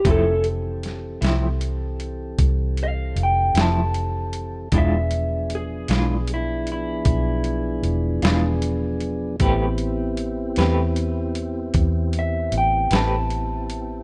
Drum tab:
HH |xxxxxxxxxxxx|xxxxxxxxxxxx|xxxxxxxxxxxx|
SD |--oo-----o--|---o-----o--|---o-----o--|
BD |o-----o-----|o-----o-----|o-----o-----|